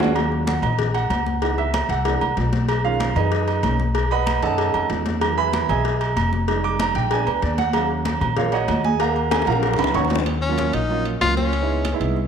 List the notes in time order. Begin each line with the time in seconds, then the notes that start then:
Already playing: D#2 C#5
0.00 G#3 C#4 D4 F#4, high conga
0.15 F#3 C#4 F4, cowbell, high conga, low agogo
0.32 high conga
0.47 F#5, cowbell, high conga, low agogo
0.62 A#1 D#5, high conga, low conga, low agogo
0.79 cowbell, high conga, low conga
0.94 F#5, cowbell, high conga, low agogo
1.10 C#2, cowbell, high conga, low agogo
1.26 high conga
1.42 E3 B3 D#4 F#5, cowbell, high conga, low agogo
1.58 E5, high conga, low agogo
1.74 cowbell, high conga, low agogo
1.89 C2 F#5, cowbell, high conga
2.05 E3 A#3 D4, cowbell, high conga, low agogo
2.21 C2, high conga, low agogo
2.37 B1, cowbell, high conga, low timbale
2.53 cowbell, high conga
2.69 cowbell, high conga, low agogo
2.84 D#3 G#3 C#4 F4 F5, high conga
3.00 cowbell, high conga, low agogo
3.15 F#2 D#4 G#4 B4 D#5, high conga, low conga, low agogo
3.32 cowbell, high conga
3.48 cowbell, high conga, low agogo
3.63 B1 D#3 G#3 C#4, cowbell, high conga, low agogo
3.80 high conga
3.95 cowbell, high conga, low agogo
4.11 B4 D#5 F#5 B5, high conga, low agogo
4.26 cowbell, high conga, low agogo
4.42 F#2 D#3 A3 C#4 A4 D#5 F#5 A5, cowbell, high conga
4.58 cowbell, high conga, low agogo
4.74 F2, high conga, low agogo
4.90 E2, cowbell, high conga, low timbale
5.06 cowbell, high conga
5.21 D#3 F#3 G#3, cowbell, high conga, low agogo
5.38 B4 E5 G#5 B5, high conga
5.53 cowbell, high conga, low agogo
5.69 B1 G#4 D#5 E5 G#5, high conga, low conga, low agogo
5.85 cowbell, high conga
6.01 cowbell, high conga, low agogo
6.16 F1, cowbell, high conga, low agogo
6.33 high conga
6.48 G3 G#3 D#4, cowbell, high conga, low agogo
6.64 D6, high conga, low agogo
6.79 A#5, cowbell, high conga, low agogo
6.95 A#1 G5, cowbell, high conga
7.11 G#3 B3 D4 G#5, cowbell, high conga, low agogo
7.27 D2 B4, high conga, low agogo
7.42 D#2 D5, cowbell, high conga
7.58 F#5, cowbell, high conga
7.73 F#3 C#4 F5, cowbell, high conga, low agogo
7.90 high conga
8.05 cowbell, high conga, low agogo
8.21 A#1, high conga, low conga, low agogo
8.37 F4 A#4 C#5 F5, cowbell, high conga, low conga
8.52 F#4 C#5 D#5 F#5, cowbell, high conga, low agogo
8.68 D#2, cowbell, high conga, low timbale, low agogo
8.84 G#4 G#5, high conga
9.00 A#4 F5 F#5 A#5, cowbell, high conga, low agogo
9.16 high conga, low agogo
9.31 G#4 G#5, cowbell, high bongo, high conga, low agogo
9.42 high bongo
9.47 A#1 F3 F#3 C#4 A#4 F5 F#5 A#5, cowbell, high conga
9.52 high bongo
9.63 cowbell, high bongo, high conga, low agogo
9.73 low bongo
9.79 C#2 B4 B5, high conga, high timbale, low agogo
9.84 low bongo
9.94 D#2 C#5 F#5 A#5 C#6, cowbell, low bongo, high conga, high timbale
10.05 low bongo
10.10 cowbell, high conga, low timbale
10.15 low bongo
10.26 high conga, high timbale
10.42 C#4, high conga
10.49 F#3 A#3 C#4 F4
10.58 high conga, high timbale, low timbale
10.73 A#1 D#4, high conga, high timbale
10.89 F#3 A#3 C#4 F4, high conga
11.05 high conga, high timbale
11.21 C#2 F#3 A#3 C#4 F4, high conga, high timbale, low timbale
11.37 C#4, high conga
11.53 high conga, high timbale
11.61 G#3 B3 D#4 E4
11.70 high conga
11.85 high conga, high timbale, low timbale
11.93 G#3 B3 D#4 E4
12.00 C2, high conga, high timbale
12.17 high conga